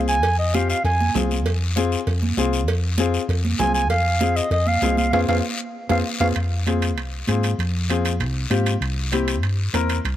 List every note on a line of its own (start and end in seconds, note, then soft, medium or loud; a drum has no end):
0.00 0.23 C2 loud
0.00 0.14 C4 medium
0.00 0.14 F4 medium
0.00 0.14 G#4 medium
0.08 0.37 G#5 loud
0.08 short guiro medium
0.23 0.72 F2 loud
0.23 cowbell loud
0.23 high conga soft
0.23 long guiro medium
0.39 0.56 D#5 medium
0.54 0.75 C4 medium
0.54 0.75 F4 medium
0.54 0.76 G4 medium
0.54 0.69 F5 medium
0.54 high conga medium
0.54 short guiro medium
0.70 0.84 F5 medium
0.70 short guiro medium
0.84 1.09 F2 medium
0.84 1.13 G#5 medium
0.84 cowbell medium
0.84 high conga soft
0.84 long guiro medium
1.01 high conga medium
1.15 1.46 C2 medium
1.15 1.36 C4 medium
1.15 1.37 F4 medium
1.15 1.37 G#4 medium
1.15 high conga medium
1.15 low conga medium
1.15 low timbale medium
1.15 short guiro medium
1.31 high conga medium
1.31 short guiro medium
1.46 1.95 F2 loud
1.46 cowbell loud
1.46 high conga soft
1.46 long guiro medium
1.76 1.98 C4 medium
1.76 1.98 F4 medium
1.76 1.98 G#4 loud
1.76 high conga medium
1.76 short guiro medium
1.92 short guiro medium
2.07 2.31 F2 medium
2.07 cowbell medium
2.07 high conga soft
2.07 long guiro medium
2.23 high conga medium
2.37 2.68 C2 loud
2.37 2.59 C4 medium
2.37 2.59 F4 medium
2.37 2.59 G#4 loud
2.37 high conga medium
2.37 short guiro medium
2.53 short guiro medium
2.68 3.17 F2 loud
2.68 cowbell loud
2.68 high conga soft
2.68 long guiro medium
2.98 3.20 C4 medium
2.98 3.20 F4 medium
2.98 3.21 G#4 loud
2.98 high conga medium
2.98 short guiro medium
3.14 short guiro medium
3.28 3.53 F2 medium
3.28 cowbell medium
3.28 high conga soft
3.28 long guiro medium
3.45 high conga medium
3.59 3.90 C2 loud
3.59 3.81 C4 medium
3.59 3.82 F4 medium
3.59 3.82 G#4 medium
3.59 3.74 G#5 loud
3.59 high conga medium
3.59 low conga medium
3.59 low timbale medium
3.59 short guiro medium
3.74 3.89 G#5 loud
3.74 short guiro medium
3.90 4.39 F2 loud
3.90 4.37 F5 loud
3.90 cowbell loud
3.90 high conga soft
3.90 long guiro medium
4.21 4.43 C4 medium
4.21 4.43 F4 medium
4.21 4.43 G#4 medium
4.21 high conga medium
4.21 short guiro medium
4.36 4.51 D#5 medium
4.36 short guiro medium
4.50 4.76 F2 loud
4.50 4.69 D#5 medium
4.50 cowbell medium
4.50 high conga soft
4.50 long guiro medium
4.67 4.97 F5 loud
4.67 high conga medium
4.82 5.12 C2 loud
4.82 5.04 C4 medium
4.82 5.04 F4 medium
4.82 5.04 G#4 medium
4.82 high conga medium
4.82 low timbale medium
4.82 short guiro medium
4.97 5.12 F5 medium
4.97 high conga medium
4.97 short guiro medium
5.13 5.25 F2 loud
5.13 5.23 C4 loud
5.13 5.23 F4 loud
5.13 5.23 G#4 loud
5.13 5.21 F5 loud
5.13 high conga loud
5.13 high timbale loud
5.13 long guiro loud
5.28 5.40 F2 loud
5.28 5.38 C4 loud
5.28 5.38 F4 loud
5.28 5.38 G#4 loud
5.28 5.36 F5 medium
5.28 high conga loud
5.28 high timbale loud
5.28 long guiro loud
5.89 6.01 F2 loud
5.89 6.00 C4 loud
5.89 6.00 F4 loud
5.89 6.00 G#4 loud
5.89 5.98 F5 medium
5.89 high conga loud
5.89 high timbale loud
5.89 long guiro loud
6.20 6.32 F2 loud
6.20 6.31 C4 medium
6.20 6.31 F4 medium
6.20 6.30 G#4 medium
6.20 6.28 F5 loud
6.20 high conga loud
6.20 high timbale loud
6.20 long guiro loud
6.36 6.97 F2 loud
6.36 high conga soft
6.36 high timbale medium
6.36 long guiro medium
6.66 6.88 C4 medium
6.66 6.88 F4 medium
6.66 6.89 G#4 medium
6.66 high conga medium
6.66 high timbale medium
6.66 short guiro medium
6.82 high timbale medium
6.82 short guiro medium
6.97 7.22 C2 medium
6.97 high conga soft
6.97 high timbale medium
6.97 long guiro medium
7.27 7.53 G#2 medium
7.27 7.49 C4 medium
7.27 7.50 F4 medium
7.27 7.50 G#4 medium
7.27 high conga medium
7.27 high timbale medium
7.27 short guiro medium
7.43 high timbale medium
7.43 short guiro medium
7.58 8.21 F2 medium
7.58 high conga soft
7.58 high timbale medium
7.58 long guiro medium
7.90 8.11 C4 medium
7.90 8.11 F4 medium
7.90 8.12 G#4 medium
7.90 high conga medium
7.90 high timbale medium
7.90 short guiro medium
8.05 high timbale medium
8.05 short guiro medium
8.19 8.44 C2 medium
8.19 high conga soft
8.19 high timbale medium
8.19 long guiro medium
8.50 8.75 G#2 medium
8.50 8.72 C4 medium
8.50 8.73 F4 medium
8.50 8.73 G4 medium
8.50 high conga medium
8.50 high timbale medium
8.50 short guiro medium
8.66 high timbale medium
8.66 short guiro medium
8.81 9.42 C2 loud
8.81 high conga soft
8.81 high timbale medium
8.81 long guiro medium
9.12 9.34 C4 medium
9.12 9.34 E4 medium
9.12 9.34 G4 medium
9.12 high conga medium
9.12 high timbale medium
9.12 short guiro medium
9.28 high timbale medium
9.28 short guiro medium
9.42 9.67 G2 medium
9.42 high conga soft
9.42 high timbale medium
9.42 long guiro medium
9.73 9.98 E2 medium
9.73 9.95 C4 medium
9.73 9.96 E4 medium
9.73 9.96 A#4 medium
9.73 high conga medium
9.73 high timbale medium
9.73 short guiro medium
9.89 high timbale medium
9.89 short guiro medium
10.04 10.16 C2 medium
10.04 high conga soft
10.04 high timbale medium
10.04 long guiro medium